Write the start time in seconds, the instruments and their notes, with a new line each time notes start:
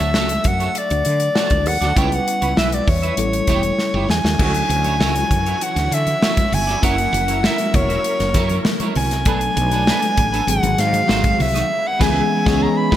Already playing: tine electric piano F#3 A3 D4 A4, soprano saxophone E5
0.00 fretless electric bass D2, clean electric guitar F#4 A4
0.14 fretless electric bass C#2, clean electric guitar F#4 A4 C#5, snare
0.29 muted clean electric guitar stroke, closed hi-hat
0.44 fretless electric bass F#2, soprano saxophone F#5, muted clean electric guitar stroke, kick, closed hi-hat
0.60 clean electric guitar F#4 A4 C#5, closed hi-hat
0.75 soprano saxophone D5, muted clean electric guitar stroke, closed hi-hat
0.90 fretless electric bass D2, muted clean electric guitar stroke, closed hi-hat
1.05 fretless electric bass D3, closed hi-hat
1.20 muted clean electric guitar stroke, closed hi-hat
1.35 clean electric guitar F#4 A4 C#5, snare
1.50 fretless electric bass D2, muted clean electric guitar stroke, kick, closed hi-hat
1.66 fretless electric bass D#2, soprano saxophone F#5, muted clean electric guitar stroke, open hi-hat
1.81 fretless electric bass D2, clean electric guitar F#4 A4 D5, snare, closed hi-hat
1.96 fretless electric bass C#2, tine electric piano G3 B3 C#4 E4 B4, clean electric guitar E4 B4 C#5, soprano saxophone G5, kick, closed hi-hat
2.11 soprano saxophone F#5, muted clean electric guitar stroke, closed hi-hat
2.27 muted clean electric guitar stroke, closed hi-hat
2.41 fretless electric bass C#2, clean electric guitar E4 B4 C#5, closed hi-hat
2.57 fretless electric bass B1, clean electric guitar E4 B4 E5, soprano saxophone E5, snare
2.72 soprano saxophone D5, muted clean electric guitar stroke, closed hi-hat
2.87 fretless electric bass E2, soprano saxophone C#5, muted clean electric guitar stroke, kick, open hi-hat
3.02 clean electric guitar E4 B4 E5, closed hi-hat
3.16 fretless electric bass A1, tine electric piano G3 A3 B3 E4 A4, muted clean electric guitar stroke, closed hi-hat
3.24 tine electric piano C#4
3.32 muted clean electric guitar stroke, closed hi-hat
3.47 fretless electric bass E1, clean electric guitar E4 G4 C#5, kick, snare, closed hi-hat
3.63 closed hi-hat
3.79 muted clean electric guitar stroke, snare
3.94 fretless electric bass G1, clean electric guitar E4 G4 C#5
4.09 fretless electric bass E2, soprano saxophone G#5, snare
4.24 fretless electric bass D#2, muted clean electric guitar stroke, snare
4.38 fretless electric bass D2, string section E3 E4 F#4 C#5, tine electric piano F#3 C#4 D4 E4 G#4, clean electric guitar E4 F#4 C#5, kick, crash
4.47 tine electric piano A4
4.55 muted clean electric guitar stroke, closed hi-hat
4.69 fretless electric bass D2, muted clean electric guitar stroke, closed hi-hat, high conga
4.84 clean electric guitar E4 F#4 C#5, closed hi-hat, high conga
5.00 fretless electric bass C#2, clean electric guitar E4 F#4 C#5, snare, muted conga
5.16 closed hi-hat
5.31 fretless electric bass F#2, muted clean electric guitar stroke, kick, closed hi-hat, low conga
5.46 clean electric guitar E4 F#4 C#5, closed hi-hat
5.61 soprano saxophone F#5, muted clean electric guitar stroke, closed hi-hat
5.76 fretless electric bass D2, muted clean electric guitar stroke, snare, closed hi-hat
5.91 fretless electric bass D3, soprano saxophone E5, closed hi-hat
6.07 muted clean electric guitar stroke, closed hi-hat, high conga
6.22 clean electric guitar E4 F#4 C#5, snare, muted conga, high conga
6.37 muted clean electric guitar stroke, kick, closed hi-hat, high conga
6.52 fretless electric bass G1, soprano saxophone G#5, muted clean electric guitar stroke, open hi-hat, muted conga, low conga
6.67 clean electric guitar E4 F#4 D5, snare, closed hi-hat
6.82 fretless electric bass F#1, tine electric piano F#3 A#3 C#4 E4 A#4, string section F#3 A#4, clean electric guitar E4 A#4 C#5, soprano saxophone F#5, kick, closed hi-hat, muted conga
6.97 muted clean electric guitar stroke, closed hi-hat
7.13 fretless electric bass F#1, muted clean electric guitar stroke, closed hi-hat, muted conga, high conga
7.28 clean electric guitar E4 A#4 C#5, closed hi-hat, high conga
7.43 clean electric guitar E4 A#4 E5, soprano saxophone E5, snare, muted conga
7.58 muted clean electric guitar stroke, closed hi-hat
7.74 fretless electric bass E1, soprano saxophone C#5, muted clean electric guitar stroke, kick, closed hi-hat, muted conga, low conga
7.89 clean electric guitar E4 A#4 E5, closed hi-hat
8.04 muted clean electric guitar stroke, closed hi-hat
8.19 fretless electric bass F#1, muted clean electric guitar stroke, snare, closed hi-hat
8.34 fretless electric bass F#2, clean electric guitar E4 A#4 C#5, kick, snare, closed hi-hat
8.49 clean electric guitar E4 A#4 C#5, closed hi-hat, high conga
8.65 muted clean electric guitar stroke, snare, muted conga, high conga
8.80 clean electric guitar E4 A#4 C#5, closed hi-hat, high conga
8.95 fretless electric bass C2, soprano saxophone G#5, muted clean electric guitar stroke, open hi-hat, low conga
9.11 muted clean electric guitar stroke, snare, closed hi-hat
9.25 fretless electric bass B1, tine electric piano F#3 A3 B3 D4 A4, string section A3 B3 D4, clean electric guitar D4 A4 B4, kick, closed hi-hat, muted conga
9.41 muted clean electric guitar stroke, closed hi-hat
9.56 fretless electric bass B1, muted clean electric guitar stroke, closed hi-hat, muted conga, high conga
9.71 clean electric guitar D4 A4 B4, closed hi-hat, high conga
9.87 clean electric guitar D4 A4 B4, snare
10.02 muted clean electric guitar stroke, closed hi-hat
10.17 fretless electric bass A1, muted clean electric guitar stroke, kick, closed hi-hat, muted conga, low conga
10.32 clean electric guitar D4 A4 B4, closed hi-hat
10.47 fretless electric bass G#1, tine electric piano D#3 F#3 G#3 C4 G#4, string section G#3 C4 F#4, soprano saxophone F#5, muted clean electric guitar stroke, closed hi-hat
10.63 fretless electric bass G#1, muted clean electric guitar stroke, closed hi-hat
10.78 fretless electric bass G#2, soprano saxophone F5, snare, closed hi-hat
10.93 muted clean electric guitar stroke, closed hi-hat, high conga
11.08 fretless electric bass G#1, clean electric guitar D#4 F#4 C5, snare, muted conga, high conga
11.23 muted clean electric guitar stroke, kick, closed hi-hat, high conga
11.39 fretless electric bass C2, soprano saxophone E5, muted clean electric guitar stroke, open hi-hat, muted conga, low conga
11.54 clean electric guitar D#4 F#4 D#5, snare, closed hi-hat
11.71 string section C#3 B3 E4
11.87 soprano saxophone F#5
11.99 fretless electric bass C#2, tine electric piano E3 G#3 B3 C#4 G#4, clean electric guitar E4 G#4 B4, soprano saxophone G#5, kick, snare, crash
12.45 fretless electric bass C#2, tine electric piano E3 G#3 B3 C#4 G#4, clean electric guitar E4 G#4 C#5, kick, snare
12.62 soprano saxophone A#5
12.77 soprano saxophone B5
12.91 fretless electric bass G1, tine electric piano F3 G#3 B3 G4, string section G3 F4 G#4 B4, clean electric guitar F4 G#4 B4, kick, snare